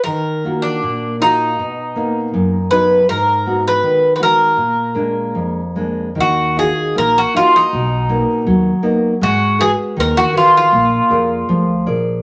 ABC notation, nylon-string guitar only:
X:1
M:2/4
L:1/8
Q:1/4=79
K:Ebm
V:1 name="Nylon-string guitar"
E, [B,FG] B,, [EFG] | =B,, [^A,=B,^D] ^F,, [^F,B,D] | A,, [A,CG] E, [A,CG] | B,, [A,B,=D] F,, [A,B,D] |
E, [EFG] B, [EFG] | =B,, [^A,=B,^D] ^F, [A,B,D] | A, [GAc] E, [GAc] | B, [AB=d] F, [ABd] |]